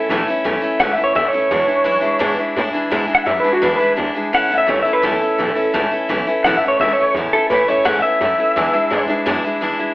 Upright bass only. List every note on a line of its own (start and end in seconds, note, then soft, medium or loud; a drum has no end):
0.09 0.26 A1 medium
0.27 muted upright bass stroke medium
0.45 0.61 B1 medium
0.61 muted upright bass stroke medium
0.79 0.97 C#2 medium
0.98 muted upright bass stroke medium
1.15 1.32 D2 medium
1.33 muted upright bass stroke medium
1.51 1.68 E2 medium
1.68 muted upright bass stroke medium
1.85 2.02 F#2 loud
2.03 muted upright bass stroke soft
2.21 2.38 G#2 medium
2.39 muted upright bass stroke medium
2.56 2.73 A2 medium
2.74 muted upright bass stroke medium
2.92 3.08 G#2 medium
3.09 muted upright bass stroke medium
3.26 3.44 F#2 loud
3.44 muted upright bass stroke medium
3.62 3.79 E2 medium
3.80 muted upright bass stroke medium
3.98 4.15 D2 medium
4.15 muted upright bass stroke medium
4.33 4.49 C#2 medium
4.51 muted upright bass stroke soft
4.68 4.85 C2 loud
4.86 muted upright bass stroke medium
5.03 5.20 B1 medium
5.22 muted upright bass stroke medium
5.39 5.56 A1 medium
5.57 muted upright bass stroke medium
5.74 5.91 C#2 medium
5.91 muted upright bass stroke medium
6.09 6.26 B1 medium
6.27 muted upright bass stroke medium
6.44 6.61 A1 medium
6.62 muted upright bass stroke medium
6.79 6.96 C#2 loud
6.97 muted upright bass stroke medium
7.14 7.32 E2 loud
7.33 muted upright bass stroke medium
7.50 7.67 A2 medium
7.68 muted upright bass stroke medium
7.86 8.02 G#2 medium
8.03 muted upright bass stroke medium
8.20 8.38 F#2 medium
8.39 muted upright bass stroke medium
8.56 8.73 E2 medium
8.73 muted upright bass stroke medium
8.91 9.08 G#2 medium
9.09 muted upright bass stroke medium
9.26 9.43 F#2 loud
9.44 muted upright bass stroke medium
9.61 9.78 E2 medium
9.80 muted upright bass stroke soft